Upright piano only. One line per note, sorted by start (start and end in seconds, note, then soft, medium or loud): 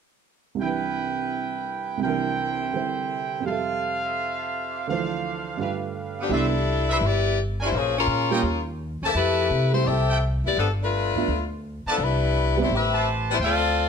0.55 1.96 C2 soft
0.55 1.99 C3 soft
0.60 2.02 E3 soft
0.60 2.04 D4 soft
0.66 2.06 B4 soft
1.98 3.43 C2 soft
1.98 3.42 C3 soft
2.03 3.46 E3 soft
2.03 3.47 D4 soft
2.09 3.49 A#4 medium
2.73 3.45 D3 soft
2.73 3.45 G3 soft
2.73 3.46 E4 soft
2.73 3.46 C5 soft
3.40 4.85 F2 soft
3.40 4.87 C3 soft
3.46 4.88 G3 soft
3.46 4.90 E5 soft
3.52 4.91 A4 soft
4.87 5.59 D2 soft
4.87 5.57 D3 soft
4.87 5.60 E3 soft
4.87 5.60 F3 soft
4.92 5.61 C5 soft
5.57 6.29 G2 soft
5.57 6.30 D3 soft
5.57 6.31 A3 soft
5.57 6.31 F4 soft
5.62 6.32 B4 soft
6.30 6.51 G3 medium
6.30 6.51 B3 medium
6.30 6.52 D4 medium
6.30 6.52 E4 medium
8.31 8.42 G3 medium
8.31 8.42 A#3 medium
8.31 8.43 C#4 medium
8.31 8.43 F4 medium
9.73 9.84 G3 medium
9.73 9.85 A3 soft
9.73 9.85 C4 medium
9.73 9.85 E4 medium
11.16 11.27 A3 medium
11.16 11.27 B3 soft
11.16 11.27 D4 soft
11.16 11.28 F4 medium
12.57 12.68 G3 medium
12.57 12.69 B3 medium
12.57 12.69 C4 medium
12.57 12.69 E4 medium